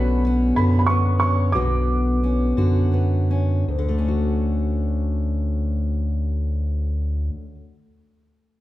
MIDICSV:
0, 0, Header, 1, 4, 480
1, 0, Start_track
1, 0, Key_signature, 2, "major"
1, 0, Tempo, 645856
1, 1151, Time_signature, 6, 3, 24, 8
1, 1151, Tempo, 695249
1, 2111, Tempo, 765306
1, 5665, End_track
2, 0, Start_track
2, 0, Title_t, "Felt piano"
2, 0, Program_c, 0, 0
2, 0, Note_on_c, 0, 83, 88
2, 151, Note_off_c, 0, 83, 0
2, 418, Note_on_c, 0, 83, 71
2, 576, Note_off_c, 0, 83, 0
2, 587, Note_on_c, 0, 83, 58
2, 643, Note_on_c, 0, 85, 74
2, 652, Note_off_c, 0, 83, 0
2, 878, Note_off_c, 0, 85, 0
2, 890, Note_on_c, 0, 85, 75
2, 1126, Note_off_c, 0, 85, 0
2, 1132, Note_on_c, 0, 86, 78
2, 2075, Note_off_c, 0, 86, 0
2, 5665, End_track
3, 0, Start_track
3, 0, Title_t, "Steel-string acoustic guitar"
3, 0, Program_c, 1, 25
3, 0, Note_on_c, 1, 47, 65
3, 0, Note_on_c, 1, 50, 57
3, 0, Note_on_c, 1, 59, 58
3, 0, Note_on_c, 1, 61, 57
3, 0, Note_on_c, 1, 66, 64
3, 194, Note_off_c, 1, 61, 0
3, 197, Note_on_c, 1, 61, 50
3, 415, Note_off_c, 1, 50, 0
3, 424, Note_off_c, 1, 47, 0
3, 424, Note_on_c, 1, 50, 53
3, 427, Note_off_c, 1, 66, 0
3, 430, Note_on_c, 1, 66, 56
3, 658, Note_off_c, 1, 59, 0
3, 667, Note_on_c, 1, 59, 49
3, 909, Note_off_c, 1, 61, 0
3, 912, Note_on_c, 1, 61, 51
3, 1124, Note_off_c, 1, 59, 0
3, 1149, Note_on_c, 1, 47, 60
3, 1153, Note_on_c, 1, 59, 53
3, 1170, Note_off_c, 1, 61, 0
3, 1624, Note_on_c, 1, 61, 45
3, 1848, Note_off_c, 1, 50, 0
3, 1857, Note_on_c, 1, 50, 49
3, 1860, Note_off_c, 1, 66, 0
3, 1862, Note_off_c, 1, 47, 0
3, 1863, Note_on_c, 1, 66, 54
3, 2099, Note_off_c, 1, 59, 0
3, 2107, Note_on_c, 1, 59, 45
3, 2334, Note_off_c, 1, 61, 0
3, 2342, Note_on_c, 1, 61, 47
3, 2549, Note_off_c, 1, 59, 0
3, 2551, Note_off_c, 1, 61, 0
3, 2551, Note_off_c, 1, 66, 0
3, 2577, Note_on_c, 1, 38, 48
3, 2634, Note_off_c, 1, 50, 0
3, 2642, Note_on_c, 1, 50, 46
3, 2704, Note_on_c, 1, 57, 45
3, 2766, Note_on_c, 1, 61, 44
3, 2828, Note_on_c, 1, 66, 40
3, 4873, Note_off_c, 1, 38, 0
3, 4938, Note_off_c, 1, 50, 0
3, 5000, Note_off_c, 1, 57, 0
3, 5062, Note_off_c, 1, 61, 0
3, 5124, Note_off_c, 1, 66, 0
3, 5665, End_track
4, 0, Start_track
4, 0, Title_t, "Analog synth bass"
4, 0, Program_c, 2, 38
4, 0, Note_on_c, 2, 35, 98
4, 392, Note_off_c, 2, 35, 0
4, 424, Note_on_c, 2, 42, 85
4, 1143, Note_on_c, 2, 35, 88
4, 1154, Note_off_c, 2, 42, 0
4, 1832, Note_off_c, 2, 35, 0
4, 1859, Note_on_c, 2, 42, 80
4, 2553, Note_off_c, 2, 42, 0
4, 2578, Note_on_c, 2, 38, 80
4, 4849, Note_off_c, 2, 38, 0
4, 5665, End_track
0, 0, End_of_file